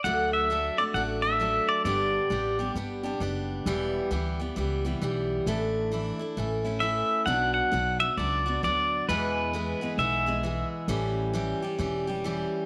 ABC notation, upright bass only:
X:1
M:4/4
L:1/8
Q:"Swing" 1/4=133
K:D
V:1 name="Upright bass" clef=bass
D,,4 A,,,4 | G,,,2 A,,,2 G,,,2 F,,,2 | E,,,2 D,,2 C,,2 B,,,2 | A,,,4 A,,,4 |
B,,,2 B,,,2 C,,2 D,,2 | E,,4 B,,,4 | A,,,4 E,,,4 |]